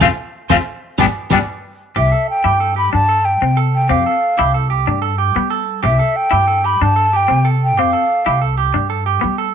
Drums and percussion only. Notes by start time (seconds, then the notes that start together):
0.01 kick, snare, low conga, low agogo, shekere
0.49 kick, snare, low conga, low agogo, shekere
0.98 kick, snare, low conga, low agogo, shekere
1.30 kick, snare, low conga, low agogo, shekere